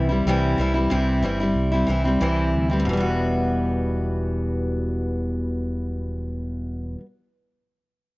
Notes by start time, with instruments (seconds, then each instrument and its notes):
Already playing: fingered electric bass C2
0.09 steel-string acoustic guitar G3 C4 E4
0.25 fingered electric bass C2, steel-string acoustic guitar C3 E3 G3 C4 E4
0.58 fingered electric bass C2, steel-string acoustic guitar E3 G3 C4 E4
0.74 steel-string acoustic guitar G3 C4 E4
0.90 fingered electric bass C2, steel-string acoustic guitar C3 E3 G3 C4 E4
1.22 fingered electric bass G1, steel-string acoustic guitar E3 G3 C4 E4
1.40 steel-string acoustic guitar G3 C4 E4
1.54 fingered electric bass C2
1.72 steel-string acoustic guitar G3 C4 E4
1.87 fingered electric bass C2, steel-string acoustic guitar E3 G3 C4 E4
2.04 steel-string acoustic guitar G3 C4 E4
2.20 fingered electric bass C2, steel-string acoustic guitar C3 E3 G3 C4 E4
2.53 fingered electric bass D2
2.70 steel-string acoustic guitar G3 C4 E4
2.80 steel-string acoustic guitar E2
2.85 fingered electric bass E1, steel-string acoustic guitar B2
2.89 steel-string acoustic guitar E3
2.93 steel-string acoustic guitar G3
2.97 steel-string acoustic guitar B3 F#4